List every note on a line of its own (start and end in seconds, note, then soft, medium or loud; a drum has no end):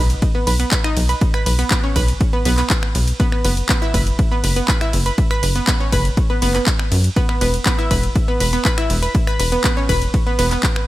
0.00 0.15 B1 loud
0.10 closed hi-hat medium
0.22 kick loud
0.22 closed hi-hat medium
0.22 ride medium
0.35 0.43 B3 medium
0.35 0.43 B4 medium
0.47 0.65 B1 loud
0.47 0.56 B4 medium
0.47 0.56 B5 medium
0.47 open hi-hat loud
0.47 ride medium
0.60 0.71 B3 medium
0.60 0.71 B4 medium
0.60 closed hi-hat medium
0.71 0.80 B4 loud
0.71 0.80 B5 medium
0.71 kick loud
0.71 clap loud
0.71 closed hi-hat medium
0.71 ride medium
0.84 0.93 D#4 loud
0.84 0.93 D#5 medium
0.84 finger snap medium
0.97 1.14 B1 medium
0.97 open hi-hat medium
0.97 ride medium
1.09 1.18 B4 medium
1.09 1.18 B5 medium
1.09 closed hi-hat medium
1.21 kick loud
1.21 closed hi-hat medium
1.21 ride medium
1.34 1.45 B4 loud
1.34 1.45 B5 medium
1.34 finger snap medium
1.46 1.64 B1 loud
1.46 1.55 B4 medium
1.46 1.55 B5 medium
1.46 open hi-hat loud
1.46 ride medium
1.59 1.70 B3 medium
1.59 1.70 B4 medium
1.59 closed hi-hat medium
1.71 1.76 B3 loud
1.71 1.76 B4 medium
1.71 kick loud
1.71 clap loud
1.71 closed hi-hat medium
1.71 ride medium
1.84 1.89 C#4 medium
1.84 1.89 C#5 medium
1.96 2.14 B1 loud
1.96 2.08 B4 loud
1.96 2.08 B5 medium
1.96 kick medium
1.96 open hi-hat medium
1.96 ride medium
2.08 closed hi-hat medium
2.21 kick loud
2.21 closed hi-hat medium
2.21 ride medium
2.33 2.42 B3 medium
2.33 2.42 B4 medium
2.45 2.63 B1 loud
2.45 2.51 B3 loud
2.45 2.51 B4 medium
2.45 open hi-hat loud
2.45 ride medium
2.58 2.70 B3 medium
2.58 2.70 B4 medium
2.58 clap soft
2.58 closed hi-hat medium
2.70 kick loud
2.70 clap loud
2.70 closed hi-hat medium
2.70 ride medium
2.83 finger snap medium
2.95 3.13 B1 medium
2.95 open hi-hat loud
2.95 ride medium
3.08 closed hi-hat medium
3.20 3.28 B3 loud
3.20 3.28 B4 medium
3.20 kick loud
3.20 closed hi-hat medium
3.20 ride medium
3.32 3.41 B3 medium
3.32 3.41 B4 medium
3.32 finger snap medium
3.45 3.62 F#1 loud
3.45 3.53 B3 medium
3.45 3.53 B4 medium
3.45 open hi-hat loud
3.45 ride medium
3.57 closed hi-hat medium
3.69 3.75 B3 loud
3.69 3.75 B4 medium
3.69 kick loud
3.69 clap loud
3.69 closed hi-hat medium
3.69 ride medium
3.82 3.90 E4 loud
3.82 3.90 E5 medium
3.94 4.12 F#1 loud
3.94 4.06 B4 medium
3.94 4.06 B5 medium
3.94 kick medium
3.94 open hi-hat loud
3.94 ride medium
4.07 closed hi-hat medium
4.19 kick loud
4.19 closed hi-hat medium
4.19 ride medium
4.32 4.40 B3 medium
4.32 4.40 B4 medium
4.44 4.62 F#1 loud
4.44 4.52 B4 medium
4.44 4.52 B5 medium
4.44 open hi-hat loud
4.44 ride medium
4.56 4.68 B3 medium
4.56 4.67 B4 medium
4.56 closed hi-hat medium
4.68 4.77 B4 loud
4.68 4.77 B5 medium
4.68 kick loud
4.68 clap loud
4.68 closed hi-hat soft
4.68 ride medium
4.81 4.90 E4 loud
4.81 4.90 E5 medium
4.81 finger snap medium
4.93 5.11 F#1 medium
4.93 open hi-hat loud
4.93 ride medium
5.06 5.14 B4 medium
5.06 5.14 B5 medium
5.06 closed hi-hat medium
5.18 kick loud
5.18 closed hi-hat medium
5.18 ride medium
5.31 5.42 B4 loud
5.31 5.42 B5 medium
5.31 finger snap medium
5.43 5.61 F#1 loud
5.43 5.52 B4 medium
5.43 5.52 B5 medium
5.43 open hi-hat loud
5.43 ride medium
5.56 5.67 B3 medium
5.56 5.67 B4 medium
5.56 closed hi-hat medium
5.67 5.73 B3 loud
5.67 5.73 B4 medium
5.67 kick loud
5.67 clap loud
5.67 closed hi-hat medium
5.67 ride medium
5.80 5.85 C#4 medium
5.80 5.85 C#5 medium
5.92 6.10 F#1 loud
5.92 6.04 B4 loud
5.92 6.04 B5 medium
5.92 kick medium
5.92 open hi-hat loud
5.92 ride medium
6.05 closed hi-hat medium
6.17 kick loud
6.17 closed hi-hat medium
6.17 ride medium
6.30 6.38 B3 medium
6.30 6.38 B4 medium
6.42 6.60 F#1 loud
6.42 6.47 B3 loud
6.42 6.47 B4 medium
6.42 open hi-hat loud
6.42 ride medium
6.54 6.66 B3 medium
6.54 6.66 B4 medium
6.54 clap soft
6.54 closed hi-hat medium
6.67 kick loud
6.67 clap loud
6.67 closed hi-hat soft
6.67 ride medium
6.79 finger snap medium
6.92 7.09 F#2 medium
6.92 open hi-hat loud
6.92 ride medium
7.04 closed hi-hat medium
7.16 7.25 B3 loud
7.16 7.25 B4 medium
7.16 kick loud
7.16 closed hi-hat medium
7.16 ride medium
7.29 7.37 B3 medium
7.29 7.37 B4 medium
7.29 finger snap medium
7.41 7.59 E1 loud
7.41 7.50 B3 medium
7.41 7.50 B4 medium
7.41 open hi-hat loud
7.41 ride medium
7.54 closed hi-hat medium
7.66 7.71 B3 loud
7.66 7.71 B4 medium
7.66 kick loud
7.66 clap loud
7.66 closed hi-hat medium
7.66 ride medium
7.79 7.87 E4 loud
7.79 7.87 E5 medium
7.91 8.09 E1 loud
7.91 8.03 B4 medium
7.91 8.03 B5 medium
7.91 kick medium
7.91 open hi-hat medium
7.91 ride medium
8.03 closed hi-hat medium
8.16 kick loud
8.16 closed hi-hat soft
8.16 ride medium
8.28 8.37 B3 medium
8.28 8.37 B4 medium
8.40 8.58 E1 loud
8.40 8.49 B4 medium
8.40 8.49 B5 medium
8.40 open hi-hat loud
8.40 ride medium
8.53 8.65 B3 medium
8.53 8.64 B4 medium
8.53 closed hi-hat medium
8.65 8.74 B4 loud
8.65 8.74 B5 medium
8.65 kick loud
8.65 clap loud
8.65 closed hi-hat soft
8.65 ride medium
8.78 8.86 E4 loud
8.78 8.86 E5 medium
8.78 finger snap medium
8.90 9.08 E1 medium
8.90 open hi-hat medium
8.90 ride medium
9.03 9.11 B4 medium
9.03 9.11 B5 medium
9.03 closed hi-hat medium
9.15 kick loud
9.15 closed hi-hat medium
9.15 ride medium
9.27 9.38 B4 loud
9.27 9.38 B5 medium
9.27 finger snap medium
9.39 9.57 E1 loud
9.39 9.48 B4 medium
9.39 9.48 B5 medium
9.39 open hi-hat loud
9.39 ride medium
9.52 9.63 B3 medium
9.52 9.63 B4 medium
9.52 closed hi-hat medium
9.64 9.70 B3 loud
9.64 9.70 B4 medium
9.64 kick loud
9.64 clap loud
9.64 closed hi-hat medium
9.64 ride medium
9.77 9.82 C#4 medium
9.77 9.82 C#5 medium
9.89 10.07 E1 loud
9.89 10.01 B4 loud
9.89 10.01 B5 medium
9.89 kick medium
9.89 open hi-hat medium
9.89 ride medium
10.02 closed hi-hat medium
10.14 kick loud
10.14 closed hi-hat medium
10.14 ride medium
10.27 10.35 B3 medium
10.27 10.35 B4 medium
10.39 10.57 E1 loud
10.39 10.44 B3 loud
10.39 10.44 B4 medium
10.39 open hi-hat loud
10.39 ride medium
10.51 10.63 B3 medium
10.51 10.63 B4 medium
10.51 clap soft
10.51 closed hi-hat medium
10.63 kick loud
10.63 clap loud
10.63 closed hi-hat soft
10.63 ride medium
10.76 finger snap medium